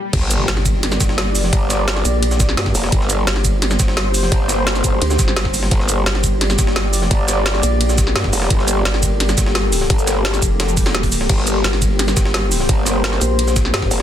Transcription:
Already playing: G5, swell
0.13 G1 A#3 G4 D5, kick, closed hi-hat, crash, ride, impact
0.22 snare
0.31 closed hi-hat, ride, shaker
0.48 G1, snare, closed hi-hat, ride
0.57 snare
0.66 kick, closed hi-hat, ride, shaker
0.83 snare, closed hi-hat, ride
0.92 snare, shaker
1.00 G1, kick, snare, closed hi-hat, ride, shaker
1.09 snare
1.18 snare, closed hi-hat, ride
1.35 open hi-hat, shaker
1.44 snare
1.53 G1, kick, closed hi-hat, ride
1.70 snare, closed hi-hat, ride, shaker
1.88 snare, closed hi-hat, ride
1.96 snare
2.05 A#1, closed hi-hat, ride, shaker
2.23 closed hi-hat, ride
2.31 snare, shaker
2.40 kick, snare, closed hi-hat, ride, shaker
2.49 snare
2.57 G2, snare, closed hi-hat, ride
2.66 kick, snare
2.75 F1, open hi-hat, ride, shaker
2.84 snare
2.92 G1 C5, kick, closed hi-hat, ride
3.01 snare
3.10 closed hi-hat, ride, shaker
3.27 G1, snare, closed hi-hat, ride
3.36 snare
3.45 kick, closed hi-hat, ride, shaker
3.62 snare, closed hi-hat, ride
3.71 snare, shaker
3.79 G1, kick, snare, closed hi-hat, ride, shaker
3.88 snare
3.97 snare, closed hi-hat, ride
4.14 open hi-hat, shaker
4.23 snare
4.32 G1, kick, closed hi-hat, ride
4.49 snare, closed hi-hat, ride, shaker
4.67 snare, closed hi-hat, ride
4.75 snare, shaker
4.84 G1, kick, closed hi-hat, ride, shaker
5.02 D2, closed hi-hat, ride
5.10 snare, shaker
5.19 G1, kick, snare, closed hi-hat, ride, shaker
5.28 snare
5.36 snare, closed hi-hat, ride
5.45 kick, snare
5.54 open hi-hat, ride, shaker
5.63 snare
5.71 G1 D5, kick, closed hi-hat, ride
5.80 snare
5.89 closed hi-hat, ride, shaker
6.06 G1, snare, closed hi-hat, ride
6.15 snare
6.24 kick, closed hi-hat, ride, shaker
6.41 snare, closed hi-hat, ride
6.50 snare, shaker
6.59 G1, kick, snare, closed hi-hat, ride, shaker
6.67 snare
6.76 snare, closed hi-hat, ride
6.93 open hi-hat, shaker
7.02 snare
7.11 G1, kick, closed hi-hat, ride
7.28 snare, closed hi-hat, ride, shaker
7.46 snare, closed hi-hat, ride
7.54 snare
7.63 A#1, closed hi-hat, ride, shaker
7.81 closed hi-hat, ride
7.89 snare, shaker
7.98 kick, snare, closed hi-hat, ride, shaker
8.07 snare
8.16 G2, snare, closed hi-hat, ride
8.24 kick, snare
8.33 F1, open hi-hat, ride, shaker
8.42 snare
8.50 G1 A4, kick, closed hi-hat, ride
8.59 snare
8.68 closed hi-hat, ride, shaker
8.85 G1, snare, closed hi-hat, ride
8.94 snare
9.03 kick, closed hi-hat, ride, shaker
9.20 snare, closed hi-hat, ride
9.29 snare, shaker
9.38 G1, kick, snare, closed hi-hat, ride, shaker
9.46 snare
9.55 snare, closed hi-hat, ride
9.73 open hi-hat, shaker
9.81 snare
9.90 G1, kick, closed hi-hat, ride
9.99 shaker
10.07 snare, closed hi-hat, ride, shaker
10.25 snare, closed hi-hat, ride
10.34 snare, shaker
10.42 F1, kick, closed hi-hat, ride, shaker
10.60 snare, closed hi-hat, ride, swell
10.69 shaker
10.77 kick, closed hi-hat, open hi-hat, shaker
10.86 snare, ride
10.95 snare, closed hi-hat
11.03 kick, snare, open hi-hat, shaker
11.12 open hi-hat, ride, shaker
11.21 snare
11.29 G1 C5, kick, closed hi-hat, crash, ride
11.38 snare
11.47 closed hi-hat, ride, shaker
11.64 G1, snare, closed hi-hat, ride
11.73 snare
11.82 kick, closed hi-hat, ride, shaker
11.99 snare, closed hi-hat, ride
12.08 snare, shaker
12.17 G1, kick, snare, closed hi-hat, ride, shaker
12.25 snare
12.34 snare, closed hi-hat, ride
12.52 open hi-hat, shaker
12.60 snare
12.69 G1, kick, closed hi-hat, ride
12.87 snare, closed hi-hat, ride, shaker
13.04 snare, closed hi-hat, ride
13.13 snare
13.21 A#1, closed hi-hat, ride, shaker
13.39 closed hi-hat, ride
13.48 snare, shaker
13.56 kick, snare, closed hi-hat, ride, shaker
13.65 snare
13.74 G2, snare, closed hi-hat, ride
13.82 kick, snare
13.91 F1, open hi-hat, ride, shaker

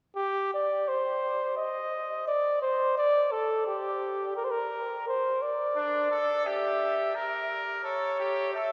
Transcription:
0.16 G4
0.54 D5
0.88 C5
1.57 D#5
2.27 D5
2.62 C5
2.97 D5
3.31 A4
3.67 G4
4.37 A#4
4.44 C5
4.51 A#4
5.08 C5
5.42 D5
5.76 D4
6.11 A4
6.46 G4 E5
7.15 A#4
7.84 A4 C#5
8.19 G4
8.54 A4 E5

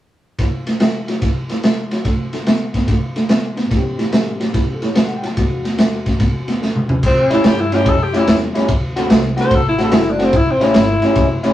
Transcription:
0.39 A2 E3, kick, snare, ride
0.67 A2 E3, snare, ride
0.80 A2 F#3, snare, ride
1.08 A2 F#3, snare, ride
1.21 A2 E3, kick, snare, ride
1.49 A2 E3, snare, ride
1.63 A2 F#3, snare, ride
1.91 A2 F#3, snare, ride
2.05 D3 A3, kick, snare, ride
2.33 D3 A3, snare, ride
2.46 D3 B3, snare, ride
2.74 D3 B3, kick, snare, ride
2.88 D3 A3, kick, snare, ride
3.16 D3 A3, snare, ride
3.29 D3 B3, snare, ride
3.57 D3 B3, snare, ride
3.65 A2 E3
3.71 A2 E3 B3 C#4, kick, snare, ride
3.76 G4
3.98 A2 E3, snare, ride
4.12 A2 F#3, snare, ride
4.40 A2 F#3, snare, ride
4.54 A2 E3, kick, snare, ride
4.75 A4
4.82 A2 E3 C#5, snare, ride
4.95 A2 F#3 E5, snare, ride
5.06 F#5
5.16 G5
5.22 A2 F#3, snare, ride
5.27 A5
5.36 E2 B2 E3 G#3 D4 F#4, kick, snare, ride
5.64 E2 B2, snare, ride
5.78 E2 C#3, snare, ride
6.06 E2 C#3, kick, snare, ride
6.20 E2 B2, kick, snare, ride
6.48 E2 B2, snare, ride
6.62 E2 C#3, snare
6.76 mid tom
6.89 E2 C#3, floor tom
7.03 A2 C4, kick, crash
7.30 A2 G3 C#4 E4, snare, ride
7.44 G2 G4, snare, ride
7.60 E4
7.72 A2 G3 C#4 E4 G4, snare, ride
7.86 F#2 A4, kick, ride
8.03 G4
8.13 A2 G3 C#4 E4, snare, ride
8.17 E4
8.27 E2 G3 B3 C#4 E4, snare, ride
8.54 A2 G3 C#4 E4, snare, ride
8.68 D2, kick, ride
8.96 D3 A3 C4 F#4, snare, ride
9.10 C2, snare, ride
9.37 D3 A3 C4 F#4 C5, snare, ride
9.51 A1, kick, ride
9.55 A4
9.68 E4
9.78 D3 A3 C4 F#4, snare, ride
9.83 A4
9.91 F#1 F#3 A3 C4 E4, snare, ride
9.96 E4
10.11 D4
10.19 D3 A3 C4 F#4, snare, ride
10.24 C4
10.33 A1 E4, kick, ride
10.51 C4
10.61 A2 G3 C#4 E4, snare, ride
10.65 E4
10.74 G1, snare, ride
11.02 A2 G3 C#4 E4, snare, ride
11.15 F#1, kick, snare, ride
11.43 A2 G3 C#4 E4, snare, ride

